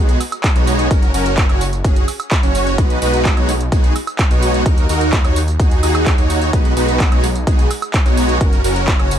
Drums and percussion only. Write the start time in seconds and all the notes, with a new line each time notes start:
0.09 closed hi-hat, tambourine
0.21 open hi-hat, tambourine, high woodblock
0.32 closed hi-hat, tambourine, high woodblock
0.44 kick, clap, closed hi-hat, tambourine
0.56 closed hi-hat, tambourine
0.67 open hi-hat, tambourine
0.79 closed hi-hat, tambourine
0.91 kick, closed hi-hat, tambourine
1.02 closed hi-hat, tambourine
1.14 open hi-hat, tambourine
1.26 closed hi-hat, tambourine
1.38 kick, clap, closed hi-hat, tambourine
1.49 closed hi-hat, high woodblock
1.61 open hi-hat, tambourine
1.73 closed hi-hat, tambourine
1.85 kick, closed hi-hat, tambourine
1.96 closed hi-hat, tambourine
2.08 open hi-hat, tambourine, high woodblock
2.20 closed hi-hat, tambourine, high woodblock
2.31 kick, clap, closed hi-hat, tambourine
2.43 closed hi-hat, tambourine
2.55 open hi-hat, tambourine
2.67 closed hi-hat, tambourine
2.78 kick, closed hi-hat, tambourine
2.90 closed hi-hat, tambourine
3.02 open hi-hat, tambourine
3.14 closed hi-hat, tambourine
3.25 kick, clap, closed hi-hat, tambourine
3.37 closed hi-hat, high woodblock
3.49 open hi-hat, tambourine
3.61 closed hi-hat, tambourine
3.72 kick, closed hi-hat, tambourine
3.84 closed hi-hat, tambourine
3.96 open hi-hat, tambourine, high woodblock
4.07 closed hi-hat, tambourine, high woodblock
4.19 kick, clap, closed hi-hat, tambourine
4.31 closed hi-hat, tambourine
4.42 open hi-hat, tambourine
4.54 closed hi-hat, tambourine
4.66 kick, closed hi-hat, tambourine
4.78 closed hi-hat, tambourine
4.89 open hi-hat, tambourine
5.01 closed hi-hat, tambourine
5.13 kick, clap, closed hi-hat, tambourine
5.24 closed hi-hat, tambourine, high woodblock
5.36 open hi-hat, tambourine
5.48 closed hi-hat, tambourine
5.60 kick, closed hi-hat, tambourine
5.71 closed hi-hat, tambourine
5.83 open hi-hat, tambourine, high woodblock
5.95 closed hi-hat, tambourine, high woodblock
6.06 kick, clap, closed hi-hat, tambourine
6.18 closed hi-hat, tambourine
6.30 open hi-hat, tambourine
6.42 closed hi-hat, tambourine
6.53 kick, closed hi-hat, tambourine
6.65 closed hi-hat, tambourine
6.77 open hi-hat, tambourine
6.88 closed hi-hat, tambourine
7.00 kick, clap, closed hi-hat, tambourine
7.12 closed hi-hat, high woodblock
7.24 open hi-hat, tambourine
7.35 closed hi-hat, tambourine
7.47 kick, closed hi-hat, tambourine
7.59 closed hi-hat, tambourine
7.71 open hi-hat, tambourine, high woodblock
7.82 closed hi-hat, tambourine, high woodblock
7.94 kick, clap, closed hi-hat, tambourine
8.06 closed hi-hat, tambourine
8.17 open hi-hat, tambourine
8.29 closed hi-hat, tambourine
8.41 kick, closed hi-hat, tambourine
8.53 closed hi-hat, tambourine
8.64 open hi-hat, tambourine
8.76 closed hi-hat, tambourine
8.88 kick, clap, closed hi-hat, tambourine
8.99 closed hi-hat, high woodblock
9.11 open hi-hat, tambourine